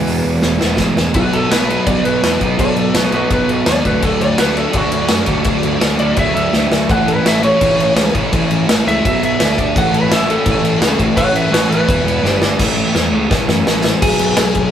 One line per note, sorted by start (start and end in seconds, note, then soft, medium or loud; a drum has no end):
0.00 0.58 E2 medium
0.00 0.59 B2 loud
0.00 0.58 E3 medium
0.00 0.59 G#3 medium
0.00 0.59 B3 medium
0.00 0.75 B3 medium
0.00 0.58 E4 loud
0.00 0.44 B4 medium
0.06 0.21 E1 medium
0.06 open hi-hat medium
0.24 0.38 E1 medium
0.42 0.56 E1 loud
0.42 0.75 A4 medium
0.42 snare medium
0.59 0.76 E1 medium
0.59 0.76 E2 medium
0.59 0.77 B2 medium
0.59 0.76 E3 medium
0.59 0.77 G#3 medium
0.59 0.77 B3 medium
0.59 0.76 E4 medium
0.59 snare medium
0.77 0.93 B1 medium
0.77 1.12 E2 medium
0.77 1.12 B2 medium
0.77 1.13 E3 medium
0.77 1.13 G#3 medium
0.77 1.13 B3 medium
0.77 1.14 E4 loud
0.77 kick medium
0.77 snare medium
0.96 1.11 E1 medium
0.96 snare medium
1.14 1.28 B1 medium
1.14 1.49 B2 medium
1.14 1.50 F#3 medium
1.14 1.50 B3 medium
1.14 1.50 D#4 loud
1.14 1.34 F#4 medium
1.14 kick loud
1.14 crash medium
1.33 1.46 B1 medium
1.33 1.51 A4 medium
1.33 crash medium
1.50 1.77 B1 medium
1.50 1.66 B2 medium
1.50 1.68 F#3 medium
1.50 1.67 B3 medium
1.50 1.68 D#4 medium
1.50 1.85 B4 medium
1.50 snare loud
1.50 crash medium
1.68 1.84 B2 medium
1.68 1.85 F#3 medium
1.68 1.85 B3 medium
1.68 1.86 D#4 medium
1.68 crash medium
1.85 2.00 B1 medium
1.85 2.21 B2 medium
1.85 2.23 F#3 medium
1.85 2.23 B3 loud
1.85 2.23 D#4 loud
1.85 2.04 D5 medium
1.85 kick loud
1.85 crash medium
2.04 2.18 B1 medium
2.04 2.39 B4 loud
2.04 crash medium
2.23 2.36 E2 loud
2.23 2.38 B2 medium
2.23 2.39 F#3 medium
2.23 2.39 B3 medium
2.23 2.39 D#4 loud
2.23 snare loud
2.23 crash medium
2.39 2.54 B1 medium
2.39 2.56 B2 medium
2.39 2.58 F#3 medium
2.39 2.57 B3 medium
2.39 2.58 D#4 medium
2.39 kick medium
2.39 crash medium
2.57 2.72 B1 medium
2.57 2.93 B2 medium
2.57 2.94 F#3 medium
2.57 2.94 B3 loud
2.57 2.95 D#4 loud
2.57 2.77 A4 medium
2.57 2.77 D5 loud
2.57 kick loud
2.57 crash medium
2.75 2.89 B1 medium
2.75 2.94 A4 medium
2.75 crash medium
2.80 2.95 D5 medium
2.94 3.07 B1 loud
2.94 3.11 B2 medium
2.94 3.12 F#3 medium
2.94 3.12 B3 loud
2.94 3.12 D#4 medium
2.94 3.12 F#4 medium
2.94 3.13 B4 medium
2.94 snare loud
2.94 crash medium
3.11 3.25 B1 loud
3.11 3.29 B2 medium
3.11 3.30 F#3 medium
3.11 3.30 B3 medium
3.11 3.30 D#4 loud
3.11 3.30 F#4 medium
3.11 3.30 B4 medium
3.11 crash medium
3.30 3.43 B1 loud
3.30 3.66 B2 loud
3.30 3.68 F#3 loud
3.30 3.67 B3 loud
3.30 3.68 D#4 loud
3.30 3.49 B4 medium
3.30 kick loud
3.30 crash medium
3.48 3.61 B1 medium
3.48 crash medium
3.66 3.80 D#2 medium
3.66 3.83 B2 medium
3.66 3.84 F#3 loud
3.66 3.84 B3 medium
3.66 3.84 D#4 loud
3.66 3.85 D5 loud
3.66 snare loud
3.66 crash medium
3.83 3.98 D2 medium
3.83 4.02 D3 loud
3.83 4.02 F#3 medium
3.83 4.02 A3 loud
3.83 4.02 D4 medium
3.83 4.02 B4 medium
3.83 kick medium
3.83 crash medium
4.02 4.16 D2 medium
4.02 4.37 D3 medium
4.02 4.38 F#3 loud
4.02 4.38 A3 loud
4.02 4.39 D4 loud
4.02 4.21 A4 medium
4.02 kick loud
4.02 crash medium
4.21 4.33 D2 medium
4.21 4.38 D5 loud
4.21 crash medium
4.38 4.65 D2 medium
4.38 4.55 D3 medium
4.38 4.56 F#3 medium
4.38 4.56 A3 loud
4.38 4.57 D4 loud
4.38 4.58 B4 loud
4.38 snare loud
4.38 crash medium
4.56 4.71 D3 medium
4.56 4.72 F#3 medium
4.56 4.74 A3 medium
4.56 4.73 D4 medium
4.56 4.74 A4 medium
4.56 crash medium
4.73 4.87 D2 medium
4.73 5.07 D3 medium
4.73 5.07 F#3 loud
4.73 5.09 A3 loud
4.73 5.08 D4 loud
4.73 kick loud
4.73 crash medium
4.78 5.80 F#4 loud
4.92 5.05 D2 medium
4.92 crash medium
5.08 5.22 F#2 loud
5.08 5.25 D3 medium
5.08 5.25 F#3 medium
5.08 5.27 A3 medium
5.08 5.27 D4 loud
5.08 snare loud
5.08 crash medium
5.26 5.41 D2 loud
5.26 5.42 D3 medium
5.26 5.43 F#3 medium
5.26 5.44 A3 medium
5.26 5.44 D4 medium
5.26 kick medium
5.26 crash medium
5.44 5.58 D2 medium
5.44 5.79 D3 medium
5.44 5.79 F#3 medium
5.44 5.81 A3 loud
5.44 5.80 D4 loud
5.44 kick loud
5.44 crash medium
5.63 5.76 D2 medium
5.63 crash medium
5.80 5.94 D2 loud
5.80 5.97 D3 medium
5.80 5.97 F#3 medium
5.80 5.99 A3 loud
5.80 5.98 D4 loud
5.80 snare loud
5.80 crash medium
5.98 6.12 D2 medium
5.98 6.15 D3 medium
5.98 6.16 F#3 medium
5.98 6.17 A3 medium
5.98 6.17 D4 medium
5.98 6.17 D5 loud
5.98 crash medium
6.16 6.30 D2 loud
6.16 6.51 D3 loud
6.16 6.52 F#3 loud
6.16 6.53 A3 loud
6.16 6.53 D4 loud
6.16 6.34 E5 medium
6.16 kick loud
6.16 crash medium
6.35 6.48 D2 medium
6.35 6.87 E5 medium
6.35 crash medium
6.53 6.67 D2 medium
6.53 6.69 D3 medium
6.53 6.70 F#3 medium
6.53 6.71 A3 loud
6.53 6.70 D4 loud
6.53 snare medium
6.70 6.83 D2 medium
6.70 6.87 D3 medium
6.70 6.88 F#3 medium
6.70 6.89 A3 medium
6.70 6.88 D4 medium
6.70 snare loud
6.88 7.03 A1 loud
6.88 7.22 A2 medium
6.88 7.22 E3 medium
6.88 7.22 A3 loud
6.88 7.23 C#4 loud
6.88 7.24 E4 medium
6.88 7.07 F#5 medium
6.88 kick loud
6.88 crash medium
7.06 7.20 A1 medium
7.06 7.25 B4 loud
7.06 crash medium
7.23 7.51 A1 loud
7.23 7.40 A2 medium
7.23 7.41 E3 medium
7.23 7.41 A3 loud
7.23 7.42 C#4 medium
7.23 7.43 E4 medium
7.23 snare loud
7.23 crash medium
7.28 7.43 E5 medium
7.42 7.59 A2 medium
7.42 7.60 E3 medium
7.42 7.60 A3 medium
7.42 7.61 C#4 medium
7.42 7.61 E4 medium
7.42 8.13 C#5 loud
7.42 crash medium
7.60 7.74 A1 loud
7.60 7.94 A2 loud
7.60 7.95 E3 medium
7.60 7.96 A3 medium
7.60 7.96 C#4 loud
7.60 7.96 E4 loud
7.60 kick loud
7.60 crash medium
7.78 7.91 A1 medium
7.78 crash medium
7.96 8.09 C#2 medium
7.96 8.12 A2 loud
7.96 8.13 E3 loud
7.96 8.14 A3 medium
7.96 8.14 C#4 medium
7.96 8.14 E4 medium
7.96 snare loud
7.96 crash medium
8.13 8.28 A1 medium
8.13 8.31 A2 medium
8.13 8.31 E3 medium
8.13 8.32 A3 medium
8.13 8.33 C#4 medium
8.13 8.33 E4 loud
8.13 kick loud
8.13 crash medium
8.32 8.45 A1 loud
8.32 8.67 A2 loud
8.32 8.68 E3 loud
8.32 8.68 A3 loud
8.32 8.69 C#4 loud
8.32 8.70 E4 loud
8.32 kick loud
8.32 crash medium
8.50 8.63 A1 medium
8.50 crash medium
8.68 8.81 A1 medium
8.68 8.85 A2 loud
8.68 8.86 E3 medium
8.68 8.87 A3 loud
8.68 8.87 C#4 loud
8.68 8.88 E4 loud
8.68 snare loud
8.68 crash medium
8.87 9.00 C#2 medium
8.87 9.03 A2 medium
8.87 9.03 E3 medium
8.87 9.03 A3 medium
8.87 9.04 C#4 loud
8.87 9.04 E4 loud
8.87 9.04 E5 loud
8.87 crash medium
9.04 9.18 B1 loud
9.04 9.38 B2 loud
9.04 9.38 F#3 loud
9.04 9.39 B3 loud
9.04 9.39 F#4 loud
9.04 9.22 E5 loud
9.04 kick loud
9.04 crash medium
9.23 9.35 B1 medium
9.23 9.75 E5 medium
9.23 crash medium
9.40 9.53 D2 loud
9.40 9.56 D3 loud
9.40 9.57 A3 loud
9.40 9.57 D4 loud
9.40 9.58 A4 loud
9.40 snare loud
9.40 crash medium
9.57 9.71 D2 medium
9.57 9.74 D3 medium
9.57 9.76 A3 medium
9.57 9.74 D4 medium
9.57 9.77 A4 medium
9.57 kick medium
9.57 crash medium
9.75 9.89 A1 loud
9.75 10.09 A2 medium
9.75 10.10 E3 medium
9.75 10.10 A3 loud
9.75 10.11 C#4 medium
9.75 10.11 E4 loud
9.75 10.12 A4 loud
9.75 9.94 F#5 loud
9.75 kick loud
9.75 crash medium
9.92 10.06 A1 loud
9.92 10.11 B4 medium
9.92 crash medium
10.10 10.37 A1 loud
10.10 10.27 A2 medium
10.10 10.28 E3 medium
10.10 10.28 A3 medium
10.10 10.28 C#4 medium
10.10 10.29 E4 medium
10.10 10.29 A4 medium
10.10 10.29 E5 loud
10.10 snare loud
10.10 crash medium
10.28 10.45 A2 loud
10.28 10.45 E3 medium
10.28 10.46 A3 medium
10.28 10.46 C#4 medium
10.28 10.46 E4 loud
10.28 10.47 A4 medium
10.28 10.99 A4 loud
10.28 crash medium
10.46 10.59 A1 loud
10.46 10.79 A2 medium
10.46 10.80 E3 loud
10.46 10.80 A3 loud
10.46 10.81 C#4 medium
10.46 10.82 E4 loud
10.46 10.82 A4 loud
10.46 kick loud
10.46 crash medium
10.61 10.76 A1 medium
10.61 crash medium
10.79 10.93 C#2 loud
10.79 10.97 A2 medium
10.79 10.97 E3 loud
10.79 10.98 A3 loud
10.79 10.98 C#4 loud
10.79 10.98 E4 loud
10.79 10.99 A4 loud
10.79 snare loud
10.79 crash medium
10.98 11.13 A1 medium
10.98 11.14 A2 medium
10.98 11.14 E3 medium
10.98 11.15 A3 medium
10.98 11.15 C#4 medium
10.98 11.16 E4 medium
10.98 11.16 A4 medium
10.98 kick medium
10.98 crash medium
11.15 11.30 A1 loud
11.15 11.49 A2 medium
11.15 11.50 E3 medium
11.15 11.50 A3 medium
11.15 11.50 C#4 medium
11.15 11.50 E4 loud
11.15 11.51 A4 loud
11.15 11.35 C#5 loud
11.15 11.35 F#5 loud
11.15 kick loud
11.15 crash medium
11.32 11.47 A1 medium
11.32 11.52 B4 medium
11.32 11.53 E5 medium
11.32 crash medium
11.50 11.65 A1 loud
11.50 11.67 A2 loud
11.50 11.67 E3 medium
11.50 11.68 A3 medium
11.50 11.68 C#4 loud
11.50 11.69 E4 loud
11.50 11.69 F#4 medium
11.50 11.69 A4 loud
11.50 11.68 B4 loud
11.54 snare loud
11.54 crash medium
11.68 11.83 A1 loud
11.68 11.86 A2 medium
11.68 11.85 E3 medium
11.68 11.87 A3 medium
11.68 11.86 C#4 medium
11.68 11.86 E4 medium
11.68 11.87 A4 loud
11.68 12.39 B4 loud
11.72 crash medium
11.86 12.02 E1 medium
11.86 12.22 E2 loud
11.86 12.23 B2 loud
11.86 12.22 E3 loud
11.86 12.22 B3 loud
11.86 12.22 E4 loud
11.86 12.23 B4 loud
11.86 kick loud
11.86 crash medium
12.04 12.18 E1 medium
12.04 crash medium
12.22 12.37 G1 medium
12.22 12.40 G2 loud
12.22 12.40 D3 loud
12.22 12.39 G3 loud
12.22 12.40 D4 loud
12.22 12.40 G4 loud
12.22 12.41 D5 loud
12.22 snare medium
12.40 12.54 G1 loud
12.40 12.58 G2 loud
12.40 12.58 D3 medium
12.40 12.58 G3 medium
12.40 12.58 D4 medium
12.40 12.58 G4 loud
12.40 12.59 D5 medium
12.40 snare medium
12.59 12.87 A1 medium
12.59 12.75 A2 medium
12.59 12.76 E3 loud
12.59 12.76 A3 medium
12.59 12.77 C#4 medium
12.59 12.77 E4 medium
12.59 kick loud
12.59 snare medium
12.59 crash loud
12.76 12.92 A2 medium
12.76 12.92 E3 medium
12.76 12.93 A3 loud
12.76 12.93 C#4 loud
12.76 12.94 E4 loud
12.93 13.09 E2 loud
12.93 13.10 A2 loud
12.93 13.11 E3 loud
12.93 13.11 A3 loud
12.93 13.11 C#4 loud
12.93 13.12 E4 loud
12.93 snare medium
13.11 13.26 C#2 loud
13.11 13.27 A2 medium
13.11 13.28 E3 loud
13.11 13.29 A3 medium
13.11 13.29 C#4 loud
13.11 13.29 E4 loud
13.28 13.47 A2 loud
13.28 13.45 A2 loud
13.28 13.47 E3 loud
13.28 13.47 A3 loud
13.28 13.48 C#4 loud
13.28 13.48 E4 loud
13.28 kick loud
13.28 snare medium
13.48 13.62 F#2 medium
13.48 13.65 A2 medium
13.48 13.65 E3 loud
13.48 13.66 A3 loud
13.48 13.66 C#4 loud
13.48 13.67 E4 medium
13.48 snare medium
13.66 13.94 A1 loud
13.66 13.82 A2 medium
13.66 13.83 E3 loud
13.66 13.83 A3 loud
13.66 13.84 C#4 loud
13.66 13.84 E4 loud
13.66 snare loud
13.83 14.01 A2 medium
13.83 14.01 E3 medium
13.83 14.01 A3 medium
13.83 14.01 C#4 medium
13.83 14.01 E4 medium
13.83 snare loud
13.99 14.17 B1 medium
13.99 14.71 B2 medium
13.99 14.71 F#3 loud
13.99 14.71 B3 loud
13.99 14.69 G#4 medium
13.99 14.71 G#5 medium
13.99 kick loud
13.99 crash loud
14.19 14.35 B1 medium
14.19 crash medium
14.37 14.53 B1 medium
14.37 snare loud
14.37 crash medium
14.55 14.70 B1 medium
14.55 kick medium
14.55 crash medium